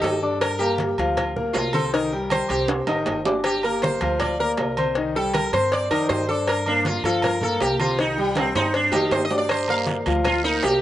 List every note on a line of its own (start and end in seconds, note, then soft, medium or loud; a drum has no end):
0.00 0.92 G2 medium
0.00 0.16 D#3 medium
0.00 0.16 D#4 medium
0.00 0.38 A4 medium
0.00 0.16 D#5 medium
0.00 high conga soft
0.00 low timbale medium
0.00 low agogo medium
0.04 cowbell medium
0.22 0.54 D4 medium
0.22 0.54 D5 medium
0.22 0.54 D6 medium
0.22 high conga soft
0.41 0.60 A#4 loud
0.41 cowbell loud
0.41 high conga soft
0.41 low agogo loud
0.59 0.92 A#3 medium
0.59 0.78 G4 loud
0.59 0.92 A#4 medium
0.59 0.92 A#5 medium
0.59 high conga soft
0.59 low agogo medium
0.78 cowbell medium
0.78 high conga loud
0.78 low timbale medium
0.98 1.51 D2 medium
0.98 1.30 F3 medium
0.98 1.30 F4 medium
0.98 1.30 F5 medium
0.98 cowbell medium
0.98 high conga soft
0.98 low agogo medium
1.17 cowbell loud
1.17 high conga soft
1.17 low conga medium
1.17 low agogo loud
1.36 1.67 A#3 medium
1.36 1.67 A#4 medium
1.36 1.68 A#5 medium
1.36 high conga soft
1.36 low conga medium
1.53 2.44 C2 medium
1.53 1.73 F4 medium
1.53 cowbell medium
1.53 high conga soft
1.53 low timbale medium
1.53 low agogo medium
1.73 1.89 C4 medium
1.73 1.92 A4 loud
1.73 1.90 C5 medium
1.73 1.90 C6 medium
1.73 high conga medium
1.73 low agogo loud
1.93 2.08 D#3 medium
1.93 2.09 D#4 medium
1.93 2.29 A#4 medium
1.93 2.09 D#5 medium
1.93 cowbell loud
1.93 high conga soft
2.12 2.43 G3 medium
2.12 2.43 G4 medium
2.12 2.44 G5 medium
2.12 high conga soft
2.30 2.50 C5 loud
2.30 cowbell medium
2.30 high conga medium
2.30 low timbale medium
2.30 low agogo loud
2.49 2.85 C2 loud
2.49 2.81 C4 medium
2.49 2.68 G4 medium
2.49 2.81 C5 medium
2.49 2.82 C6 medium
2.49 cowbell medium
2.49 high conga soft
2.49 low agogo medium
2.68 cowbell loud
2.68 high conga soft
2.68 high timbale medium
2.87 3.05 A1 medium
2.87 3.19 D#3 medium
2.87 3.19 D#4 medium
2.87 3.19 D#5 medium
2.87 high conga soft
2.87 high timbale medium
2.87 low agogo loud
3.06 3.96 G1 medium
3.06 cowbell medium
3.06 high conga soft
3.06 low timbale medium
3.06 low agogo medium
3.25 3.57 D4 medium
3.25 3.57 D5 medium
3.25 3.57 D6 medium
3.25 high conga soft
3.25 low timbale loud
3.44 3.63 G4 medium
3.44 cowbell loud
3.44 high conga soft
3.44 low agogo loud
3.63 3.95 A#3 medium
3.63 3.95 A#4 medium
3.63 3.82 A#4 medium
3.63 3.95 A#5 medium
3.63 high conga soft
3.63 low agogo medium
3.82 4.18 C5 medium
3.82 cowbell medium
3.82 high conga loud
3.82 low timbale medium
4.01 4.54 D2 loud
4.01 4.33 F3 medium
4.01 4.33 F4 medium
4.01 4.33 F5 medium
4.01 cowbell medium
4.01 high conga soft
4.01 low agogo medium
4.20 4.39 D5 medium
4.20 cowbell loud
4.20 high conga soft
4.20 low conga medium
4.20 low agogo loud
4.39 4.71 A#3 medium
4.39 4.70 A#4 medium
4.39 4.51 A#4 loud
4.39 4.71 A#5 medium
4.39 high conga soft
4.57 5.47 C2 medium
4.57 cowbell medium
4.57 high conga soft
4.57 low timbale medium
4.57 low agogo medium
4.77 4.93 C4 medium
4.77 4.93 C5 medium
4.77 4.93 C6 medium
4.77 high conga medium
4.77 low agogo loud
4.95 5.12 D#3 medium
4.95 5.12 D#4 medium
4.95 5.12 D#5 medium
4.95 cowbell loud
4.95 high conga soft
5.15 5.46 G3 medium
5.15 5.47 G4 medium
5.15 5.34 A4 loud
5.15 5.47 G5 medium
5.15 high conga soft
5.33 5.53 A#4 medium
5.33 cowbell medium
5.33 high conga loud
5.33 low timbale medium
5.33 low agogo loud
5.53 5.88 G2 loud
5.53 5.84 C4 medium
5.53 5.72 C5 loud
5.53 5.84 C5 medium
5.53 5.85 C6 medium
5.53 cowbell medium
5.53 high conga soft
5.53 low agogo medium
5.72 5.90 D5 loud
5.72 cowbell loud
5.72 high conga soft
5.90 6.08 F2 medium
5.90 6.22 D#3 medium
5.90 6.22 D#4 medium
5.90 6.09 A#4 medium
5.90 6.22 D#5 medium
5.90 high conga soft
5.90 low agogo loud
6.09 6.98 G2 medium
6.09 6.28 C5 loud
6.09 cowbell medium
6.09 high conga soft
6.09 low timbale medium
6.09 low agogo medium
6.29 6.60 D4 medium
6.29 6.47 A4 medium
6.29 6.60 D5 medium
6.29 6.61 D6 medium
6.29 high conga soft
6.47 6.67 A#4 loud
6.47 cowbell loud
6.47 high conga soft
6.47 low agogo loud
6.66 6.98 A#3 medium
6.66 6.85 D4 medium
6.66 6.98 A#4 medium
6.66 6.99 A#5 medium
6.66 high conga soft
6.66 low agogo medium
6.85 7.04 F4 medium
6.85 cowbell medium
6.85 high conga loud
6.85 low timbale medium
7.03 7.56 G2 medium
7.03 7.36 F3 medium
7.03 7.36 F4 medium
7.03 7.23 A4 medium
7.03 7.36 F5 medium
7.03 cowbell medium
7.03 high conga soft
7.03 low agogo medium
7.22 7.42 A#4 loud
7.22 cowbell loud
7.22 high conga soft
7.22 low conga medium
7.22 low agogo loud
7.41 7.73 A#3 medium
7.41 7.61 A4 medium
7.41 7.73 A#4 medium
7.41 7.74 A#5 medium
7.41 high conga soft
7.41 low conga medium
7.60 8.50 C2 medium
7.60 7.80 G4 loud
7.60 cowbell medium
7.60 high conga soft
7.60 low timbale medium
7.60 low agogo medium
7.79 7.96 C4 medium
7.79 7.98 F4 loud
7.79 7.96 C5 medium
7.79 7.96 C6 medium
7.79 high conga medium
7.79 low agogo loud
7.98 8.15 D#3 medium
7.98 8.15 D#4 medium
7.98 8.18 D#4 medium
7.98 8.15 D#5 medium
7.98 cowbell loud
7.98 high conga soft
8.17 8.49 G3 medium
8.17 8.36 G3 medium
8.17 8.49 G4 medium
8.17 8.49 G5 medium
8.17 high conga soft
8.35 8.55 C4 medium
8.35 cowbell medium
8.35 high conga loud
8.35 high timbale loud
8.35 low agogo loud
8.55 8.90 G2 medium
8.55 8.87 C4 medium
8.55 8.74 D#4 loud
8.55 8.87 C5 medium
8.55 8.87 C6 medium
8.55 cowbell medium
8.55 high conga soft
8.55 low timbale loud
8.55 low agogo medium
8.74 8.93 D4 medium
8.74 cowbell loud
8.74 high conga soft
8.92 9.10 F2 medium
8.92 9.24 D#3 medium
8.92 9.25 D#4 medium
8.92 9.11 G4 medium
8.92 9.25 D#5 medium
8.92 high conga soft
8.92 low timbale medium
8.92 low agogo loud
9.11 10.00 G2 medium
9.11 9.24 C5 medium
9.11 cowbell medium
9.11 high conga soft
9.11 low timbale medium
9.11 low agogo medium
9.25 9.37 D#5 loud
9.30 9.62 D4 medium
9.30 9.62 D5 medium
9.30 9.62 D6 medium
9.30 high conga soft
9.30 low timbale medium
9.38 9.50 D5 loud
9.49 9.69 C5 loud
9.49 cowbell loud
9.49 high conga soft
9.49 low agogo loud
9.49 long guiro medium
9.49 claves medium
9.68 10.00 A#3 medium
9.68 10.00 A#4 medium
9.68 9.81 F5 loud
9.68 10.00 A#5 medium
9.68 high conga soft
9.68 low agogo medium
9.87 cowbell medium
9.87 high conga loud
9.87 low timbale medium
9.87 short guiro medium
10.06 10.59 D2 loud
10.06 10.38 F3 medium
10.06 10.38 F4 medium
10.06 10.38 F5 medium
10.06 cowbell medium
10.06 high conga soft
10.06 low agogo medium
10.06 short guiro medium
10.25 10.44 F4 medium
10.25 cowbell loud
10.25 high conga soft
10.25 low conga medium
10.25 low agogo loud
10.25 long guiro medium
10.25 claves medium
10.44 10.75 A#3 medium
10.44 10.63 D#4 loud
10.44 10.76 A#4 medium
10.44 10.76 A#5 medium
10.44 high conga soft
10.63 10.82 C2 medium
10.63 10.82 G4 loud
10.63 cowbell medium
10.63 high conga soft
10.63 low timbale medium
10.63 low agogo medium
10.63 short guiro medium